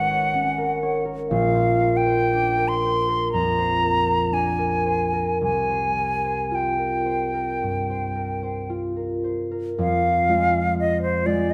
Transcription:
Already playing: harp G#1 C#4 A#4 B4, flute F#5
0.10 harp C#5
0.34 harp C#4
0.58 harp A#4
0.83 harp C#5
1.05 harp A#4
1.29 harp A#1, flute F5
1.55 harp C5
1.81 harp A#4
1.97 flute G5
2.06 harp C5
2.33 harp D4
2.57 harp A#4
2.68 flute C6
2.83 harp C5
3.09 harp A#4
3.32 harp F2, flute A#5
3.58 harp C5
3.83 harp A#4
4.06 harp C5
4.32 harp D4, flute G#5
4.58 harp A#4
4.86 harp C5
5.13 harp A#4
5.41 harp C2, flute G#5
5.69 harp C5
5.97 harp A#4
6.24 harp C5
6.51 harp F4, flute G5
6.79 harp A#4
7.06 harp C5
7.34 harp A#4
7.63 harp G2
7.90 harp C5
8.16 harp A#4
8.43 harp C5
8.70 harp F4
8.96 harp A#4
9.24 harp C5
9.51 harp A#4
9.78 harp F2, flute F5
10.29 harp G#3 F4 C5 D#5
10.79 flute D#5
11.02 flute C5
11.26 harp G#3 F4 C5 D#5, flute D5

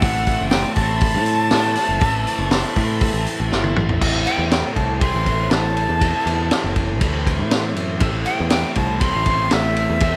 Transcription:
Already playing: transistor combo organ E4 A4 C5 A5
0.00 picked electric bass A1, overdriven electric guitar A2 E3 A3 C4 E4, flute F#5, kick, open hi-hat
0.27 kick, open hi-hat
0.41 picked electric bass F#1
0.49 flute G5, snare, open hi-hat
0.75 picked electric bass A1, overdriven electric guitar A2 E3 A3 C4 E4, flute A5, kick, open hi-hat
1.01 kick, open hi-hat
1.15 picked electric bass A2
1.26 open hi-hat
1.51 overdriven electric guitar A2 E3 A3 C4 E4, picked electric bass A2, snare, open hi-hat
1.75 snare, open hi-hat
1.89 picked electric bass F#1
2.01 picked electric bass A1, overdriven electric guitar A2 E3 A3 C4 E4, kick, open hi-hat
2.27 open hi-hat
2.39 picked electric bass F#1
2.51 snare, open hi-hat
2.76 picked electric bass A2, overdriven electric guitar E3 A3 C4 E4, kick, open hi-hat
2.80 overdriven electric guitar A2
3.01 kick, open hi-hat
3.13 picked electric bass A1
3.26 open hi-hat
3.40 picked electric bass A1
3.51 picked electric bass G1, overdriven electric guitar A2 E3 A3 C4 E4, snare
3.64 high tom
3.76 picked electric bass A1, mid tom
3.89 floor tom
4.00 picked electric bass A1, overdriven electric guitar A2 E3 C4 E4 A4, transistor combo organ E3 C4 A4 C5, kick, crash
4.25 flute G5, ride
4.38 picked electric bass E2
4.50 flute G5, snare, ride
4.75 picked electric bass C2, flute A5, kick, ride
5.00 overdriven electric guitar A2 E3 C4 E4 A4, flute C6, kick, ride
5.15 picked electric bass A1
5.26 kick, ride
5.50 picked electric bass A1, flute A5, snare, ride
5.77 ride
5.89 picked electric bass E2
6.00 overdriven electric guitar A2 E3 C4 E4 A4, kick, ride
6.26 picked electric bass E2, ride
6.51 snare, ride
6.64 picked electric bass F#1
6.76 kick, ride
7.00 picked electric bass D2, overdriven electric guitar A2 E3 C4 E4 A4, kick, ride
7.27 kick, ride
7.39 picked electric bass A2
7.51 snare, ride
7.76 picked electric bass F#2, ride
8.00 picked electric bass A1, overdriven electric guitar A2 E3 C4 E4 A4, kick, ride
8.26 flute G5, ride
8.40 picked electric bass E2
8.50 flute G5, snare, ride
8.75 picked electric bass C2, flute A5, kick, ride
9.00 overdriven electric guitar A2 E3 C4 E4 A4, flute C6, kick, ride
9.15 picked electric bass A1
9.26 kick, ride
9.51 picked electric bass A1, flute E5, snare, ride
9.77 ride
9.90 picked electric bass E2
10.00 overdriven electric guitar A2 E3 C4 E4 A4, kick, ride

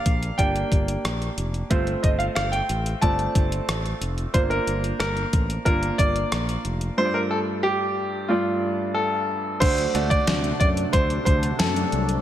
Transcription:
Already playing: grand piano A#3 D4 G4 D5 F5
0.06 fingered electric bass A#1, kick, closed hi-hat
0.23 closed hi-hat
0.38 fingered electric bass G1, grand piano A#3 D4 G4 D5 G5, kick, closed hi-hat
0.56 closed hi-hat
0.72 fingered electric bass G1, kick, closed hi-hat
0.88 closed hi-hat
1.05 fingered electric bass A#1, cross-stick, closed hi-hat
1.22 closed hi-hat
1.37 fingered electric bass F1, closed hi-hat
1.54 closed hi-hat
1.70 fingered electric bass G1, grand piano A3 C4 F4 C5, kick, closed hi-hat
1.87 closed hi-hat
2.03 fingered electric bass G1, grand piano D#5, kick, closed hi-hat
2.19 grand piano F5, closed hi-hat
2.35 fingered electric bass G1, grand piano F5, cross-stick, closed hi-hat
2.52 grand piano G5, closed hi-hat
2.69 fingered electric bass A1, closed hi-hat
2.86 closed hi-hat
3.01 fingered electric bass G1, grand piano A3 C4 F4 D5 A5, kick, closed hi-hat
3.19 closed hi-hat
3.35 fingered electric bass G1, kick, closed hi-hat
3.52 closed hi-hat
3.68 fingered electric bass A1, cross-stick, closed hi-hat
3.86 closed hi-hat
4.01 fingered electric bass F1, closed hi-hat
4.18 closed hi-hat
4.34 fingered electric bass G1, grand piano A#3 D4 F4 C5, kick, closed hi-hat
4.50 grand piano A#4, closed hi-hat
4.67 fingered electric bass G1, closed hi-hat
4.84 closed hi-hat
4.99 fingered electric bass G1, grand piano A#4, cross-stick, closed hi-hat
5.17 closed hi-hat
5.33 fingered electric bass A1, kick, closed hi-hat
5.50 closed hi-hat
5.65 fingered electric bass G1, grand piano A#3 D4 F4 A#4, kick, closed hi-hat
5.83 closed hi-hat
5.98 fingered electric bass G1, grand piano D5, kick, closed hi-hat
6.16 closed hi-hat
6.32 fingered electric bass A#1, cross-stick, closed hi-hat
6.49 closed hi-hat
6.65 fingered electric bass F1, closed hi-hat
6.81 closed hi-hat
6.97 grand piano G2 A3 D4 F4 C5
7.05 grand piano D5
7.14 grand piano A#4
7.31 grand piano A4
7.63 grand piano G4
8.28 grand piano G2 A3 D4 F4 D5
8.94 grand piano A4
9.60 fingered electric bass D2, analog synth pad C3 F#3 A3 D4, grand piano A3 D4 F#4 C5, kick, closed hi-hat, crash
9.78 closed hi-hat
9.94 fingered electric bass D2, grand piano A3 D4 F#4 D5, closed hi-hat
10.10 grand piano D5, kick, closed hi-hat
10.27 fingered electric bass D2, snare, closed hi-hat, tambourine
10.44 closed hi-hat
10.60 fingered electric bass F#2, grand piano D5, kick, closed hi-hat
10.77 closed hi-hat
10.93 fingered electric bass D2, grand piano C5, kick, closed hi-hat
11.10 closed hi-hat
11.25 fingered electric bass D2, grand piano C5, kick, closed hi-hat
11.43 closed hi-hat
11.59 fingered electric bass F#2, grand piano A4, snare, closed hi-hat, tambourine
11.76 closed hi-hat
11.92 fingered electric bass C2, closed hi-hat
12.09 closed hi-hat

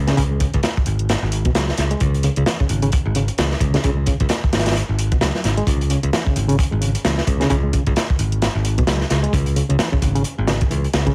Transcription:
0.07 reed electric piano C#3, snare, closed hi-hat
0.17 picked electric bass C#2, reed electric piano C#3, kick, closed hi-hat
0.31 reed electric piano G#3
0.40 reed electric piano C#3, kick, closed hi-hat
0.54 picked electric bass C#2, kick, closed hi-hat
0.63 snare, closed hi-hat
0.77 kick
0.86 picked electric bass G#1, closed hi-hat
0.99 closed hi-hat
1.09 snare, closed hi-hat
1.22 picked electric bass G#1
1.32 closed hi-hat
1.45 reed electric piano B2, kick, closed hi-hat
1.55 picked electric bass C#2, reed electric piano F#3, snare, closed hi-hat
1.69 snare
1.78 picked electric bass C#2, reed electric piano C#3, snare, closed hi-hat
1.91 reed electric piano G#3, closed hi-hat
2.00 picked electric bass C#2, reed electric piano C#3, kick, closed hi-hat
2.14 closed hi-hat
2.23 reed electric piano C#3, closed hi-hat
2.36 picked electric bass C#2, reed electric piano C#3, closed hi-hat
2.46 reed electric piano E3, snare, closed hi-hat
2.60 reed electric piano C#3, kick
2.69 picked electric bass G#1, closed hi-hat
2.82 reed electric piano C#3, closed hi-hat
2.92 kick, closed hi-hat
3.06 picked electric bass G#1, reed electric piano G#3
3.15 reed electric piano C#3, closed hi-hat
3.28 muted picked electric bass stroke, closed hi-hat
3.38 picked electric bass C#2, reed electric piano E3, snare, closed hi-hat
3.51 snare
3.60 picked electric bass C#2, reed electric piano C#3, kick, closed hi-hat
3.74 reed electric piano C#3, snare, closed hi-hat
3.84 picked electric bass C#2, reed electric piano C#3, kick, closed hi-hat
3.97 reed electric piano G#3
4.06 reed electric piano C#3, kick, closed hi-hat
4.20 picked electric bass C#2, kick, closed hi-hat
4.29 snare, closed hi-hat
4.44 kick
4.53 picked electric bass G#1, snare, closed hi-hat
4.59 snare, closed hi-hat
4.66 snare, closed hi-hat
4.71 snare, closed hi-hat
4.76 closed hi-hat
4.89 picked electric bass G#1
4.99 closed hi-hat
5.11 reed electric piano B2, muted picked electric bass stroke, kick, closed hi-hat
5.21 picked electric bass C#2, reed electric piano F#3, snare, closed hi-hat
5.35 snare
5.44 picked electric bass G#1, reed electric piano C#3, snare, closed hi-hat
5.57 reed electric piano G#3, closed hi-hat
5.67 picked electric bass C#2, reed electric piano C#3, kick, closed hi-hat
5.81 closed hi-hat
5.90 reed electric piano C#3, closed hi-hat
6.03 picked electric bass C#2, reed electric piano C#3, closed hi-hat
6.13 reed electric piano E3, snare, closed hi-hat
6.26 reed electric piano C#3, kick
6.36 picked electric bass G#1, closed hi-hat
6.48 reed electric piano C#3, closed hi-hat
6.59 kick, closed hi-hat
6.71 picked electric bass G#1, reed electric piano G#3
6.81 reed electric piano C#3, closed hi-hat
6.95 muted picked electric bass stroke, closed hi-hat
7.05 picked electric bass C#2, reed electric piano E3, snare, closed hi-hat
7.18 snare
7.27 picked electric bass C#2, reed electric piano C#3, kick, closed hi-hat
7.40 reed electric piano C#3, snare, closed hi-hat
7.50 picked electric bass C#2, reed electric piano C#3, kick, closed hi-hat
7.63 reed electric piano G#3
7.73 reed electric piano C#3, kick, closed hi-hat
7.87 picked electric bass C#2, kick, closed hi-hat
7.96 snare, closed hi-hat
8.10 kick
8.19 picked electric bass G#1, closed hi-hat
8.32 closed hi-hat
8.42 snare, closed hi-hat
8.55 picked electric bass G#1
8.65 closed hi-hat
8.78 reed electric piano B2, muted picked electric bass stroke, kick, closed hi-hat
8.87 picked electric bass C#2, reed electric piano F#3, snare, closed hi-hat
9.01 snare
9.10 picked electric bass C#2, reed electric piano C#3, snare, closed hi-hat
9.23 reed electric piano G#3, closed hi-hat
9.33 picked electric bass C#2, reed electric piano C#3, kick, closed hi-hat
9.46 closed hi-hat
9.56 reed electric piano C#3, closed hi-hat
9.69 picked electric bass C#2, reed electric piano C#3, closed hi-hat
9.79 reed electric piano E3, snare, closed hi-hat
9.92 reed electric piano C#3, kick
10.02 picked electric bass G#1, kick, closed hi-hat
10.15 reed electric piano C#3, closed hi-hat
10.24 muted picked electric bass stroke, closed hi-hat
10.38 picked electric bass G#1, reed electric piano G#3
10.47 reed electric piano C#3, snare, closed hi-hat
10.61 muted picked electric bass stroke, kick, closed hi-hat
10.70 picked electric bass C#2, reed electric piano E3, closed hi-hat
10.84 closed hi-hat
10.93 picked electric bass C#2, reed electric piano C#3, snare, closed hi-hat
11.06 reed electric piano C#3, kick, closed hi-hat

